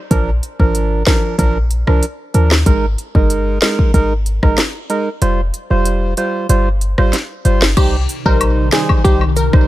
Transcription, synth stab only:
0.11 0.30 F3 loud
0.11 0.30 D4 medium
0.11 0.30 A#4 loud
0.59 1.03 F3 medium
0.59 1.03 D4 medium
0.59 1.03 A#4 medium
1.06 1.36 F3 medium
1.06 1.36 D4 medium
1.06 1.36 A#4 medium
1.38 1.58 F3 loud
1.38 1.58 D4 medium
1.38 1.58 A#4 loud
1.87 2.05 F3 medium
1.87 2.05 D4 medium
1.87 2.05 A#4 medium
2.34 2.53 F3 medium
2.34 2.54 D4 medium
2.34 2.54 A#4 medium
2.66 2.85 G#3 loud
2.66 2.86 D#4 medium
2.66 2.86 A#4 loud
3.15 3.58 G#3 medium
3.15 3.59 D#4 medium
3.15 3.59 A#4 medium
3.62 3.91 G#3 medium
3.62 3.92 D#4 medium
3.62 3.92 A#4 medium
3.94 4.13 G#3 medium
3.94 4.13 D#4 medium
3.94 4.13 A#4 loud
4.43 4.60 G#3 medium
4.43 4.61 D#4 medium
4.43 4.61 A#4 medium
4.90 5.09 G#3 medium
4.90 5.09 D#4 medium
4.90 5.09 A#4 medium
5.22 5.41 G3 medium
5.22 5.41 F4 medium
5.22 5.41 C5 loud
5.70 6.14 G3 medium
5.70 6.14 F4 medium
5.70 6.14 C5 medium
6.17 6.47 G3 medium
6.17 6.47 F4 medium
6.17 6.47 C5 medium
6.49 6.69 G3 medium
6.49 6.69 F4 medium
6.49 6.69 C5 loud
6.98 7.16 G3 medium
6.98 7.16 F4 medium
6.98 7.16 C5 medium
7.45 7.64 G3 medium
7.45 7.64 F4 medium
7.45 7.64 C5 medium
7.77 7.96 G3 medium
7.77 7.96 D#4 medium
7.77 7.96 C5 loud
8.26 8.69 G3 medium
8.26 8.69 D#4 medium
8.26 8.69 C5 medium
8.72 9.02 G3 medium
8.72 9.02 D#4 medium
8.72 9.02 C5 medium
9.04 9.24 G3 loud
9.04 9.24 D#4 medium
9.04 9.24 C5 loud
9.53 9.68 G3 medium
9.53 9.68 D#4 medium
9.53 9.68 C5 medium

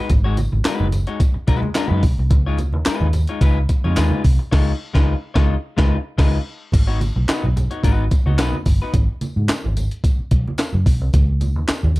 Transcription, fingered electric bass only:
0.10 0.46 G#1 medium
0.53 0.64 G#1 medium
0.80 1.04 F#1 medium
1.36 muted fingered electric bass stroke soft
1.48 1.61 B1 medium
1.91 2.02 F#2 loud
2.03 2.16 B1 medium
2.18 2.31 C2 medium
2.31 2.73 C#2 loud
2.73 2.85 D#2 medium
2.87 muted fingered electric bass stroke soft
3.01 3.25 D#2 loud
3.41 3.65 C#2 loud
3.84 3.95 F2 medium
3.98 4.10 D#2 loud
4.24 4.37 C2 medium
4.52 4.71 C#2 medium
4.95 5.13 C#2 loud
5.36 5.54 C#2 loud
5.78 5.96 C#2 medium
6.18 6.37 C#2 loud
6.73 7.09 G#1 medium
7.16 7.27 B1 medium
7.44 7.67 B1 medium
7.84 8.07 G#1 loud
8.26 8.39 C#2 medium
8.39 8.51 B1 loud
8.66 8.78 G1 medium
8.94 9.06 G#1 loud
9.22 muted fingered electric bass stroke soft
9.36 9.47 G#2 loud
9.49 muted fingered electric bass stroke soft
9.64 9.87 G#1 medium
10.19 muted fingered electric bass stroke soft
10.31 10.44 B1 medium
10.74 10.84 F#2 loud
10.86 11.01 B1 medium
11.01 11.12 C2 medium
11.14 11.56 C#2 loud
11.56 11.67 D#2 medium
11.69 muted fingered electric bass stroke soft
11.83 12.00 D#2 loud

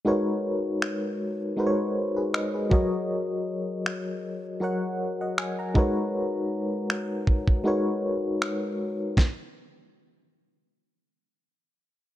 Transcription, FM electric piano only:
0.05 1.27 G#3 medium
0.05 1.27 D#4 medium
0.05 1.28 F#4 medium
0.05 1.28 A#4 medium
0.05 1.28 B4 medium
0.05 1.29 C#5 medium
1.57 2.71 G#3 medium
1.57 2.71 D#4 medium
1.57 2.69 F#4 medium
1.57 1.96 A#4 medium
1.57 1.96 B4 medium
1.57 1.66 C5 medium
1.67 2.00 C#5 medium
2.16 2.33 G#4 soft
2.16 2.33 B4 medium
2.34 2.53 B4 medium
2.34 2.53 D#5 medium
2.54 2.91 G#4 medium
2.54 2.90 B4 medium
2.70 3.93 F#3 medium
2.70 3.93 F#4 medium
2.70 3.94 A#4 medium
2.70 3.94 C#5 medium
2.70 3.94 D#5 medium
4.60 5.75 F#3 medium
4.60 5.75 F#4 medium
4.60 5.75 A#4 medium
4.60 5.76 C#5 medium
4.60 5.01 F#5 medium
5.21 5.37 D#5 soft
5.21 5.37 F#5 medium
5.38 5.57 G#5 medium
5.59 5.95 F#5 medium
5.59 5.94 A#5 medium
5.74 6.97 G#3 medium
5.74 6.97 D#4 medium
5.74 6.98 F#4 medium
5.74 6.98 A#4 medium
5.74 6.98 B4 medium
5.74 6.99 C#5 medium
7.64 8.86 G#3 medium
7.64 8.87 D#4 medium
7.64 8.87 F#4 medium
7.64 8.88 A#4 medium
7.64 8.88 B4 medium
7.64 8.88 C#5 medium

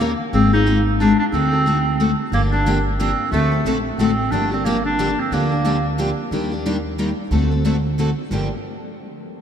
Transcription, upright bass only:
0.00 0.13 D#2 medium
0.33 1.13 G#1 medium
1.32 2.12 D2 medium
2.32 3.12 G1 medium
3.32 3.59 D2 medium
3.65 3.93 A#1 medium
3.98 4.26 A1 medium
4.31 5.12 G1 medium
5.31 6.11 D2 medium
6.31 7.11 D#2 medium
7.31 8.11 D2 medium
8.31 8.49 G1 medium

